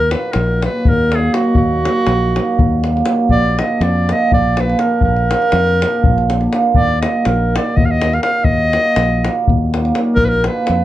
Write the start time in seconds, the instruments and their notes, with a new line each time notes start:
Already playing: fingered electric bass D#2, clarinet A#4
0.11 hammered dulcimer A#2 D#3 F#3 A#3, clarinet B4, davul high
0.32 fingered electric bass A#1, clarinet A#4, davul high
0.62 hammered dulcimer A#2 D#3 F#3 A#3, clarinet B4, davul high
0.85 fingered electric bass D#2, clarinet A#4, davul low
1.11 hammered dulcimer A#2 D#3 F#3 A#3, davul high
1.15 clarinet G#4
1.34 hammered dulcimer A#2 D#3 F#3 A#3, clarinet F#4, davul high
1.55 fingered electric bass D#2, clarinet F#4, davul low
1.84 hammered dulcimer A#2 D#3 F#3 A#3, davul high
2.07 fingered electric bass A#1, davul high
2.36 hammered dulcimer A#2 D#3 F#3 A#3, davul high
2.59 fingered electric bass D#2, davul low
2.84 hammered dulcimer A#2 D#3, davul high
2.88 hammered dulcimer F#3 A#3
2.97 davul high
3.06 hammered dulcimer A#2 D#3, davul high
3.10 hammered dulcimer F#3 A#3
3.29 fingered electric bass A#1, clarinet D5, davul low
3.57 hammered dulcimer A#2 D3 F3 A#3, clarinet D#5, davul high
3.81 fingered electric bass F2, clarinet D5, davul high
4.09 hammered dulcimer A#2 D3 F3 A#3, clarinet D#5, davul high
4.32 fingered electric bass A#1, clarinet D5, davul low
4.57 hammered dulcimer A#2 D3 F3 A#3, clarinet B4, davul high
4.70 davul high
4.79 hammered dulcimer A#2 D3 F3 A#3, clarinet A#4, davul high
5.01 fingered electric bass A#1, clarinet A#4, davul low
5.17 davul high
5.29 hammered dulcimer A#2 D3 F3 A#3, davul high
5.42 davul high
5.52 fingered electric bass F2, davul high
5.67 davul high
5.82 hammered dulcimer A#2 D3 F3 A#3, davul high
6.04 fingered electric bass A#1, davul low
6.18 davul high
6.30 hammered dulcimer A#2 D3 F3 A#3, davul high
6.41 davul high
6.53 hammered dulcimer A#2 D3 F3 A#3, davul high
6.74 fingered electric bass D#2, clarinet D5, davul low
7.01 hammered dulcimer A#2 D#3 F#3 A#3, clarinet D#5, davul high
7.25 fingered electric bass A#1, clarinet A#4, davul high
7.54 hammered dulcimer A#2 D#3 F#3 A#3, clarinet D5, davul high
7.77 fingered electric bass D#2, clarinet D#5, davul low
7.86 clarinet F5
7.91 clarinet D#5
8.01 hammered dulcimer A#2 D#3 F#3 A#3, davul high
8.13 clarinet F5, davul high
8.23 hammered dulcimer A#2 D#3 F#3 A#3, clarinet F5, davul high
8.44 fingered electric bass D#2, clarinet D#5, davul low
8.73 hammered dulcimer A#2 D#3 F#3 A#3, davul high
8.96 fingered electric bass A#1, davul high
9.24 hammered dulcimer A#2 D#3 F#3 A#3, davul high
9.48 fingered electric bass D#2, davul low
9.74 hammered dulcimer A#2 D#3 F#3 A#3, davul high
9.85 davul high
9.95 hammered dulcimer A#2 D#3 F#3 A#3, davul high
10.16 fingered electric bass A#1, clarinet A#4, davul low
10.25 clarinet A#4 B4
10.44 hammered dulcimer A#2 D3 F3 A#3, clarinet B4, davul high
10.67 fingered electric bass F2, davul high